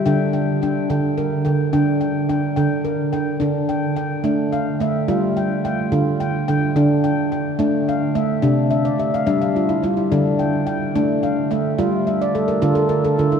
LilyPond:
<<
  \new Staff \with { instrumentName = "Handpan" } { \time 6/8 \key d \minor \tempo 4. = 72 << { g''8 g''8 g''8 g''4 g''8 | g''8 g''8 g''8 g''4 g''8~ | g''8 g''8 g''4 f''8 e''8~ | e''8 g''8 g''4 g''8 g''8~ |
g''8 g''8 g''4 f''8 e''8~ | e''8 e''16 d''16 e''16 f''16 e''16 f''16 f'16 e'16 f'16 e'16~ | e'16 r16 g''8 g''4 f''8 e''8~ | e''8 e''16 d''16 a'16 bes'16 a'16 a'16 bes'16 a'16 f'16 e'16 | } \\ { d'4 d'4 bes'4 | d'4 d'4 bes'4 | d'4 r8 d'4 r8 | f'4 r8 f'4 r8 |
d'4 r8 d'4 r8 | d'4 r8 d'4 r8 | d'4 r8 d'4 r8 | f'4 r8 f'4 r8 | } >> }
  \new Staff \with { instrumentName = "Handpan" } { \clef bass \time 6/8 \key d \minor d4. d4 d8 | d4. d4 d8 | d4. a4 a8 | g4. d4 d8 |
d4. a4 a8 | c4. g4 g8 | d4. a4 a8 | g4. d4 d8 | }
>>